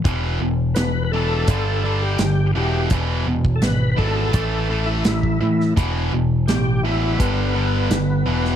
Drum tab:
HH |x---x---x---x---|x---x---x---x---|x---x---x---x---|
SD |----o-------o---|----o-------o--o|----o-------o--o|
BD |o-------o-------|o--o--o-o----o--|o-------o-------|